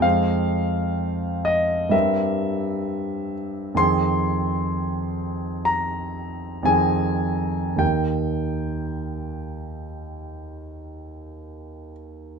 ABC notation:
X:1
M:4/4
L:1/8
Q:1/4=62
K:Cphr
V:1 name="Grand piano"
f3 e =e3 z | [K:Ebmix] c'4 b2 a2 | g6- g z |]
V:2 name="Grand piano"
[F,,A,Cc]4 [G,,G,CB]4 | [K:Ebmix] [F,,E,CA]6 [F,,E,CA]2 | [E,,E,EB]8 |]